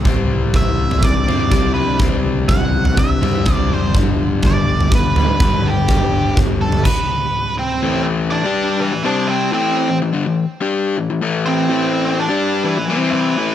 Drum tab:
CC |----------------|----------------|----------------|--------x-------|
FT |o---o--o--o-o---|o---o--o--o-o---|o---o--o--o-o---|o---o--o--------|
BD |o---o---o---o---|o---o---o---o---|o---o---o---o---|o---o---o-------|

CC |----------------|----------------|----------------|
FT |----------------|----------------|----------------|
BD |----------------|----------------|----------------|